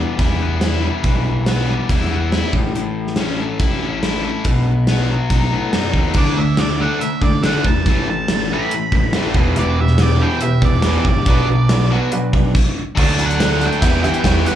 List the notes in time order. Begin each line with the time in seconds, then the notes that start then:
Already playing: E3 B3 E4
0.00 G3
0.18 E2 E4, kick, closed hi-hat
0.42 B3
0.61 E4, snare, closed hi-hat
0.84 G3
1.04 B1 E3, kick, closed hi-hat
1.46 B3, snare, closed hi-hat
1.69 G3
1.89 E2 E4, kick, closed hi-hat
2.02 snare
2.11 B3
2.32 E4, snare, closed hi-hat
2.53 A1 A2, kick
2.74 A1 A2, closed hi-hat
3.07 snare
3.16 C#4, snare, closed hi-hat
3.40 A3
3.60 A1 E4, kick, closed hi-hat
3.82 C#4
4.03 E4, snare, closed hi-hat
4.24 A3
4.45 B1 B2, kick, closed hi-hat
4.87 B3, snare, closed hi-hat
5.11 F#3
5.30 B1 D#4, kick, closed hi-hat
5.52 A2 B3
5.73 F#2 D#4, snare, closed hi-hat
5.93 D#2 F#3, kick
6.14 D2 D3 A3 D4, kick, crash
6.18 D5
6.25 snare
6.37 D3 A3 E5
6.57 D3 A3 D5, snare, closed hi-hat
6.80 D3 A3 D4 F#5
7.01 D3 A3 E5, closed hi-hat
7.22 D3 A3 D5, kick
7.43 D3 A3 D4 F#5, snare, closed hi-hat
7.65 E2 D3 A3 A5, kick
7.86 A1 A2 E3 A3, kick, closed hi-hat
8.10 A2 E3 A5
8.28 A2 E3, snare, closed hi-hat
8.52 A2 E3 A3 B5
8.71 A2 E3, closed hi-hat
8.92 A1 A2 E3, kick
9.13 A2 E3 A3, snare, closed hi-hat
9.34 E1 E2 B2 E3, kick
9.56 E1 E2 B2 E3 E4 G4 B4 D5, closed hi-hat
9.79 E2 B2 E4 G4 B4 E5
9.87 snare
9.98 E2 B2 E4 G4 B4 D5, snare, closed hi-hat
10.19 E2 B2 E3 E4 G4 B4 G5
10.41 E2 B2 E4 G4 B4 E5, closed hi-hat
10.62 E2 B2 E4 G4 B4 D5, kick
10.82 E2 B2 E3 E4 G4 B4, snare, closed hi-hat
11.05 G1 E2 B2 E4 G4 C#5, kick
11.09 D5
11.26 B1 B2 F#3 B3 D4 F#4 B4, kick, closed hi-hat
11.48 B2 F#3 D4 F#4 B4
11.69 B2 F#3 D4 F#4 B4, snare, closed hi-hat
11.90 B2 F#3 B3 D4 F#4 B4
12.12 B2 F#3 D4 F#4 B4, closed hi-hat
12.33 B1 B2 F#3 D4 F#4 B4, kick
12.55 kick, crash
12.95 D2 D3 F#3 A3 D4 F#4, kick, crash
12.99 F#4 A4 D5
13.04 A5
13.09 closed hi-hat
13.17 F#3 A3 D4 F#4 A4 D5, closed hi-hat
13.22 D4
13.26 F#5
13.31 closed hi-hat
13.39 D3 F#3 A3 D4 F#4 A4 D5, snare, closed hi-hat
13.60 F#3 A3 D4 F#4 A4 D5, closed hi-hat
13.66 G5
13.72 closed hi-hat
13.81 E2 E3 G3 B3 E4 F#4 G4 E5, kick, closed hi-hat
14.02 E3 B3 E4 F#4 G4 E5 G5, closed hi-hat
14.07 G3
14.14 closed hi-hat
14.23 E2 E3 G3 B3 E4 F#4 G4 C#5, kick, snare, closed hi-hat
14.45 B3 E4 F#4 G4 E5 F#5, closed hi-hat
14.49 G3